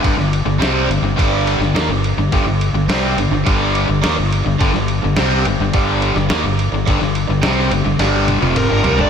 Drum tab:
RD |x-x-x-x-x-x-x-x-|x-x-x-x-x-x-x-x-|x-x-x-x-x-x-x-x-|x-x-x-x-x-x-x-x-|
SD |-o--o------oo---|----o-------o---|-o--o------oo---|-o--o---o-------|
T1 |----------------|----------------|----------------|----------oo----|
T2 |----------------|----------------|----------------|------------o---|
FT |----------------|----------------|----------------|--------------oo|
BD |o-------o-------|o-------o-------|o-------o-------|o---------------|